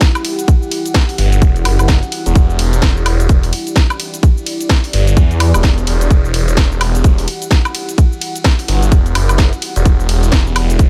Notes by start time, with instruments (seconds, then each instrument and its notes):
Already playing: ambient pad E4 G4 F#5
0.01 kick, snare, closed hi-hat, cabasa
0.15 closed hi-hat, cabasa, high woodblock
0.25 open hi-hat, ride
0.39 closed hi-hat, cabasa
0.48 kick, closed hi-hat, cabasa
0.63 cabasa
0.71 open hi-hat, ride
0.86 closed hi-hat, cabasa
0.94 kick, snare, closed hi-hat, cabasa
1.09 open hi-hat, cabasa
1.18 detuned saw bass G1, open hi-hat, ride
1.32 closed hi-hat, cabasa
1.42 detuned saw bass E1, kick, closed hi-hat, cabasa
1.56 closed hi-hat, cabasa
1.65 detuned saw bass F#1, open hi-hat, ride, high woodblock
1.79 closed hi-hat, cabasa, high woodblock
1.88 kick, snare, closed hi-hat, cabasa
2.03 closed hi-hat, cabasa
2.12 open hi-hat, ride
2.26 detuned saw bass E1, closed hi-hat, cabasa
2.35 detuned saw bass E1, ambient pad D5, kick, closed hi-hat, cabasa
2.50 cabasa
2.59 open hi-hat, ride
2.73 closed hi-hat, cabasa
2.82 detuned saw bass E1, kick, snare, closed hi-hat, cabasa
2.97 cabasa
3.06 open hi-hat, ride, high woodblock
3.20 closed hi-hat, cabasa
3.29 detuned saw bass E1, kick, closed hi-hat, cabasa
3.43 open hi-hat, cabasa
3.53 open hi-hat, ride
3.67 closed hi-hat, cabasa
3.76 kick, snare, closed hi-hat, cabasa
3.90 closed hi-hat, cabasa, high woodblock
4.00 open hi-hat, ride
4.14 closed hi-hat, cabasa
4.23 kick, closed hi-hat, cabasa
4.38 cabasa
4.46 open hi-hat, ride
4.61 closed hi-hat, cabasa
4.69 kick, snare, closed hi-hat, cabasa
4.84 open hi-hat, cabasa
4.93 detuned saw bass G1, open hi-hat, ride
5.07 closed hi-hat, cabasa
5.17 detuned saw bass E2, kick, closed hi-hat, cabasa
5.31 closed hi-hat, cabasa
5.40 open hi-hat, ride, high woodblock
5.54 detuned saw bass E1, closed hi-hat, cabasa, high woodblock
5.63 kick, snare, closed hi-hat, cabasa
5.78 closed hi-hat, cabasa
5.87 detuned saw bass E1, open hi-hat, ride
6.01 closed hi-hat, cabasa
6.11 detuned saw bass E1, ambient pad F#5, kick, closed hi-hat, cabasa
6.25 cabasa
6.34 open hi-hat, ride
6.48 closed hi-hat, cabasa
6.57 detuned saw bass E1, kick, snare, closed hi-hat, cabasa
6.72 cabasa
6.81 open hi-hat, ride, high woodblock
6.95 closed hi-hat, cabasa
7.04 detuned saw bass E1, kick, closed hi-hat, cabasa
7.18 open hi-hat, cabasa
7.28 open hi-hat, ride
7.42 closed hi-hat, cabasa
7.51 kick, snare, closed hi-hat, cabasa
7.65 closed hi-hat, cabasa, high woodblock
7.75 open hi-hat, ride
7.89 closed hi-hat, cabasa
7.98 kick, closed hi-hat, cabasa
8.13 cabasa
8.21 open hi-hat, ride
8.36 closed hi-hat, cabasa
8.44 kick, snare, closed hi-hat, cabasa
8.59 open hi-hat, cabasa
8.68 detuned saw bass G1, open hi-hat, ride
8.82 closed hi-hat, cabasa
8.92 detuned saw bass E1, kick, closed hi-hat, cabasa
9.06 closed hi-hat, cabasa
9.15 detuned saw bass F#1, open hi-hat, ride, high woodblock
9.29 closed hi-hat, cabasa, high woodblock
9.38 kick, snare, closed hi-hat, cabasa
9.53 closed hi-hat, cabasa
9.62 open hi-hat, ride
9.76 detuned saw bass E1, closed hi-hat, cabasa
9.85 detuned saw bass E1, ambient pad A4, kick, closed hi-hat, cabasa
10.00 cabasa
10.09 open hi-hat, ride
10.23 closed hi-hat, cabasa
10.32 detuned saw bass E1, kick, snare, closed hi-hat, cabasa
10.47 cabasa
10.56 open hi-hat, ride, high woodblock
10.70 closed hi-hat, cabasa
10.79 detuned saw bass E1, kick, closed hi-hat, cabasa